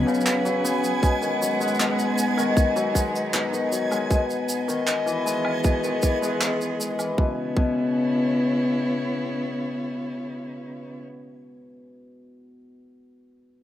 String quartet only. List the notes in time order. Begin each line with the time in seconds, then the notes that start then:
Already playing: F#3 C#4 B4 F#5
1.03 G#3
1.60 D#4
4.55 D#5
4.70 B3
5.13 G#4
7.18 C#3
7.30 B3
7.41 E4
7.53 C#5